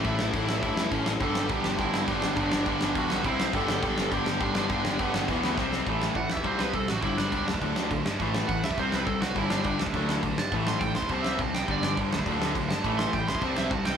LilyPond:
<<
  \new Staff \with { instrumentName = "Lead electric guitar" } { \time 4/4 \key g \lydian \tempo 4 = 206 e'2 e'4 cis'8. r16 | a'4 g'4 e'4 d'8 d'8 | d'2 fis'4 e'8. r16 | a'2 g'4 d'8 d'8 |
d'4 b2 r4 | r4 fis''8 e''8 c''8 b'8 a'8 fis'8 | e'8 d'4 r2 r8 | r4 fis''8 e''8 c''8 b'8 a'8 fis'8 |
e'8 d'4 r2 a''8 | r8 c'''8 g''8 c'''8 a''8 e''8 a''8 g''8 | d''8 d''8 r2 r8 a''8 | r8 c'''8 g''8 c'''8 a''8 e''8 a''8 g''8 | }
  \new Staff \with { instrumentName = "Overdriven electric guitar" } { \clef bass \time 4/4 \key g \lydian <a, e a cis' e' a'>4 <a, e a cis' e' a'>4 <a, e a cis' e' a'>4 <a, e a cis' e' a'>4 | <g, d g b d' g'>4 <g, d g b d' g'>4 <g, d g b d' g'>4 <g, d g b d' g'>4 | <g, d g b d' g'>4 <g, d g b d' g'>4 <g, d g b d' g'>4 <c g c' g'>4 | <g, d g b d' g'>4 <g, d g b d' g'>4 <g, d g b d' g'>4 <g, d g b d' g'>4 |
<g, d g b d' g'>4 <g, d g b d' g'>4 <e b e' b'>4 <c g c' g'>4 | <a, e a>4 <a, e>8 r8 <c g c'>4 <c g>8 r8 | <g, d g>4 <g, d g>8 r8 <d fis a>4 <d fis>8 r8 | <a, e a>4 <a, e>8 r8 <c g c'>4 <c g>8 r8 |
<g, d g>4 <g, d g>8 r8 <d fis a>4 <d fis>8 r8 | <a, e a>4 <a, e>8 r8 <c g c'>4 <c g>8 r8 | <g, d g>4 <g, d g>8 r8 <d fis a>4 <d fis>8 r8 | <a, e a>4 <a, e>8 r8 <c g c'>4 <c g>8 r8 | }
  \new Staff \with { instrumentName = "Distorted electric guitar" } { \clef bass \time 4/4 \key g \lydian <a, e a>2.~ <a, e a>8 r8 | <g, d g>1 | <g, d g>2. <c g c'>4 | <g, d g>1 |
<g, d g>2 <e, b, e>4 <c g c'>4 | <a, e a>2 <c g c'>2 | <g, d g>4. <d a d'>2~ <d a d'>8 | <a, e a>2 <c g c'>2 |
<g, d g>4. <d a d'>2~ <d a d'>8 | <a, e a>2 <c g c'>2 | <g, d g>4. <d a d'>2~ <d a d'>8 | <a, e a>2 <c g c'>2 | }
  \new Staff \with { instrumentName = "Distorted electric guitar" } { \clef bass \time 4/4 \key g \lydian r1 | <g, d g>4 <g, d g>4 <g, d g>4 <g, d g>4 | <g, d g>4 <g, d g>4 <g, d g>4 <c g c'>4 | <g, d g>4 <g, d g>4 <g, d g>4 <g, d g>4 |
<g, d g>4 <g, d g>4 <e, b, e>4 <c g c'>4 | <a, e a>4 <a, e>8 r8 <c g c'>4 <c g>8 r8 | <g, d g>4 <g, d g>8 r8 <d a d'>4 <d a>8 r8 | <a, e a>4 <a, e>8 r8 <c g c'>4 <c g>8 r8 |
<g, d g>4 <g, d g>8 r8 <d a d'>4 <d a>8 r8 | <a, e a>4 <a, e>8 r8 <c g c'>4 <c g>8 r8 | <g, d g>4 <g, d g>8 r8 <d a d'>4 <d a>8 r8 | <a, e a>4 <a, e>8 r8 <c g c'>4 <c g>8 r8 | }
  \new Staff \with { instrumentName = "Picked electric bass" } { \clef bass \time 4/4 \key g \lydian a,,8 a,,8 a,,8 a,,8 g,8 g,8 a,,4 | g,,8 g,,8 b,,8 g,,8 g,,8 g,8 g,,8 g,,8 | g,,8 g,,8 g,,8 g,,8 e,8 b,,8 c,4 | g,,8 g,,8 b,,8 g,,8 g,,8 g,8 g,,8 g,,8 |
g,,8 g,,8 g,,8 g,,8 e,,8 d,8 c,4 | a,,4 a,,8 b,,8 c,8 c,8 c,8 a,,8 | g,,8 g,,8 cis,8 d,8 d,8 d,8 b,,8 g,8 | a,,4 a,,8 cis,8 c,8 c,8 c,8 c,8 |
g,,8 g,,8 g,,8 d,8 d,8 d,8 b,,8 g,8 | a,,4 a,,8 b,,8 c,8 c,8 c,8 c,8 | g,,8 g,,8 g,,8 d,8 d,8 d,8 b,,8 g,8 | a,,4 a,,8 b,,8 c,8 c,8 c,8 c,8 | }
  \new DrumStaff \with { instrumentName = "Drums" } \drummode { \time 4/4 <cymc bd>8 sn8 <cymc bd>8 sn8 <cymc bd>8 sn8 <cymc bd>8 sn8 | <cymc bd>8 sn8 <cymc bd>8 sn8 <cymc bd>8 sn8 <cymc bd>8 sn8 | <cymc bd>8 sn8 <cymc bd>8 sn8 <cymc bd>8 sn8 <cymc bd>8 sn8 | <cymc bd>8 sn8 <cymc bd>8 sn8 <cymc bd>8 sn8 <cymc bd>8 sn8 |
<cymc bd>8 sn8 <cymc bd>8 sn8 <cymc bd>8 sn8 <bd sn>8 sn8 | <cymc bd>8 sn8 <cymc bd>8 sn16 bd16 <cymc bd>8 sn8 <cymc bd>8 sn8 | <cymc bd>8 sn8 <cymc bd>8 sn16 bd16 <cymc bd>8 sn8 <cymc bd>8 sn8 | <cymc bd>8 sn8 <cymc bd>8 sn16 bd16 <cymc bd>8 sn8 <cymc bd>8 sn8 |
<cymc bd>8 sn8 <cymc bd>8 sn16 bd16 <cymc bd>8 sn8 <cymc bd>8 sn8 | <cymc bd>8 sn8 <cymc bd>8 sn16 bd16 <cymc bd>8 sn8 <cymc bd>8 sn8 | <cymc bd>8 sn8 <cymc bd>8 sn16 bd16 <cymc bd>8 sn8 <cymc bd>8 sn8 | <cymc bd>8 sn8 <cymc bd>8 sn16 bd16 <cymc bd>8 sn8 <cymc bd>8 sn8 | }
>>